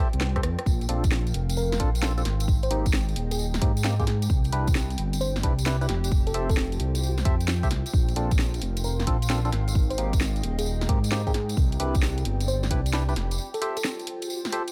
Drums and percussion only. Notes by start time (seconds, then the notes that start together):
0.13 closed hi-hat
0.21 cross-stick, snare
0.36 kick, cross-stick, closed hi-hat
0.43 cross-stick, open hi-hat
0.59 cross-stick, closed hi-hat
0.66 kick, tambourine
0.81 closed hi-hat, tambourine
0.89 open hi-hat
1.04 kick, closed hi-hat, tambourine
1.12 snare, tambourine
1.27 closed hi-hat, tambourine
1.34 open hi-hat
1.50 closed hi-hat, tambourine
1.57 tambourine
1.72 snare, tambourine
1.80 kick, open hi-hat
1.95 closed hi-hat, tambourine
2.03 snare, tambourine
2.17 closed hi-hat, tambourine
2.25 snare, open hi-hat
2.40 closed hi-hat, tambourine
2.48 kick, tambourine
2.63 closed hi-hat, tambourine
2.71 open hi-hat
2.86 kick, closed hi-hat, tambourine
2.93 snare, tambourine
3.09 closed hi-hat, tambourine
3.16 open hi-hat
3.31 closed hi-hat, tambourine
3.39 tambourine
3.54 snare, tambourine
3.62 kick, open hi-hat
3.77 closed hi-hat, tambourine
3.84 snare, tambourine
4.00 kick, closed hi-hat, tambourine
4.07 snare, open hi-hat
4.22 closed hi-hat, tambourine
4.30 kick, tambourine
4.44 closed hi-hat, tambourine
4.52 open hi-hat
4.67 kick, closed hi-hat, tambourine
4.75 snare, tambourine
4.90 closed hi-hat, tambourine
4.98 open hi-hat
5.13 closed hi-hat, tambourine
5.21 tambourine
5.36 snare, tambourine
5.43 kick, open hi-hat
5.59 closed hi-hat, tambourine
5.66 snare, tambourine
5.81 closed hi-hat, tambourine
5.89 snare, open hi-hat
6.04 closed hi-hat, tambourine
6.11 kick, tambourine
6.27 closed hi-hat, tambourine
6.34 open hi-hat
6.50 kick, closed hi-hat, tambourine
6.57 snare
6.72 closed hi-hat, tambourine
6.80 open hi-hat
6.95 closed hi-hat, tambourine
7.03 tambourine
7.18 snare, tambourine
7.25 kick, open hi-hat
7.41 closed hi-hat, tambourine
7.47 snare, tambourine
7.63 kick, closed hi-hat, tambourine
7.71 snare, open hi-hat
7.86 closed hi-hat, tambourine
7.93 kick, tambourine
8.09 closed hi-hat, tambourine
8.16 open hi-hat
8.31 kick, closed hi-hat, tambourine
8.39 snare, tambourine
8.54 closed hi-hat, tambourine
8.62 open hi-hat
8.77 closed hi-hat, tambourine
8.84 tambourine
8.99 snare, tambourine
9.07 kick, open hi-hat
9.22 closed hi-hat, tambourine
9.29 snare, tambourine
9.45 closed hi-hat, tambourine
9.53 snare, open hi-hat
9.68 closed hi-hat, tambourine
9.75 kick, tambourine
9.90 closed hi-hat, tambourine
9.98 open hi-hat
10.13 kick, closed hi-hat, tambourine
10.21 snare, tambourine
10.36 closed hi-hat, tambourine
10.43 open hi-hat
10.58 closed hi-hat, tambourine
10.66 tambourine
10.81 snare, tambourine
10.89 kick, open hi-hat
11.04 closed hi-hat, tambourine
11.12 snare, tambourine
11.27 kick, closed hi-hat, tambourine
11.34 snare, open hi-hat
11.49 closed hi-hat, tambourine
11.57 kick, tambourine
11.72 closed hi-hat, tambourine
11.80 open hi-hat
11.95 kick, closed hi-hat, tambourine
12.02 snare, tambourine
12.18 closed hi-hat, tambourine
12.25 open hi-hat
12.40 closed hi-hat, tambourine
12.48 tambourine
12.63 snare, tambourine
12.71 kick, open hi-hat
12.86 closed hi-hat, tambourine
12.93 snare, tambourine
13.09 closed hi-hat, tambourine
13.16 snare, open hi-hat
13.31 closed hi-hat, tambourine
13.38 tambourine
13.54 closed hi-hat, tambourine
13.62 open hi-hat
13.77 closed hi-hat, tambourine
13.84 snare, tambourine
13.99 closed hi-hat, tambourine
14.07 open hi-hat
14.22 closed hi-hat, tambourine
14.30 tambourine
14.45 snare, closed hi-hat, tambourine
14.52 open hi-hat
14.68 closed hi-hat, tambourine